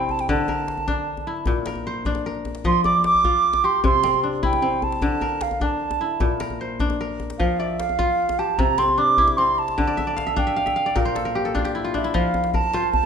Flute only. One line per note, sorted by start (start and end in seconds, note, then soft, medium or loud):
0.00 0.13 G5 medium
0.11 0.22 A5 medium
0.21 0.29 G5 medium
0.31 1.44 A5 medium
2.67 2.84 C6 loud
2.85 3.03 D6 medium
3.05 3.66 D6 loud
3.65 3.84 C6 medium
3.85 4.21 C6 loud
4.45 4.85 G5 medium
4.84 5.44 A5 medium
5.42 5.65 F5 medium
5.63 6.41 A5 medium
7.38 7.61 F5 medium
7.59 7.81 E5 medium
7.80 8.41 F5 loud
8.39 8.60 A5 medium
8.58 8.80 A#5 loud
8.78 9.00 C6 medium
8.98 9.39 D6 loud
9.37 9.60 C6 medium
9.59 10.40 A5 medium
10.39 10.99 G5 medium
10.97 11.70 F5 medium
11.95 12.16 E5 medium
12.15 12.53 F5 medium
12.54 12.91 A5 loud
12.93 13.06 A5 loud